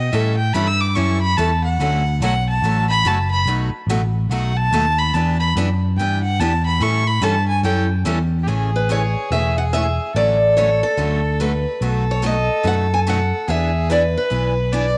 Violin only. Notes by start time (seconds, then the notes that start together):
Already playing: D#5
0.12 E5
0.37 G5
0.53 B5
0.67 E6
0.81 D6
0.95 C#6
1.21 B5
1.37 A5
1.64 F#5
2.23 F#5
2.49 A5
2.90 B5
3.07 A5
3.31 B5
4.30 F#5
4.57 A5
4.99 B5
5.14 A5
5.40 B5
5.98 G5
6.23 F#5
6.40 A5
6.66 B5
6.82 C#6
7.07 B5
7.23 A5
7.48 G#5
7.64 G5
8.43 G4
8.47 G#4
10.14 A4
11.40 B4
11.81 A4
13.47 G#4
13.89 B4
14.72 D5